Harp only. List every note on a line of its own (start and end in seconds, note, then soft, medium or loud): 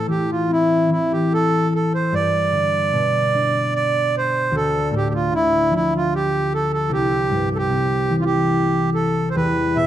0.00 2.18 A2 medium
0.00 1.70 A3 medium
0.08 0.88 E3 soft
0.48 2.99 C4 soft
0.89 2.18 E3 soft
2.12 2.98 G2 medium
2.52 2.98 D3 soft
2.93 4.58 B2 medium
3.34 6.14 D4 soft
4.51 6.94 D2 medium
4.91 5.36 A2 soft
5.32 6.94 D3 soft
5.71 6.94 F3 soft
6.89 9.39 C2 medium
7.30 7.74 G2 soft
7.69 9.39 C3 soft
8.10 9.39 E3 soft
9.36 9.87 E2 medium
9.76 9.87 B2 soft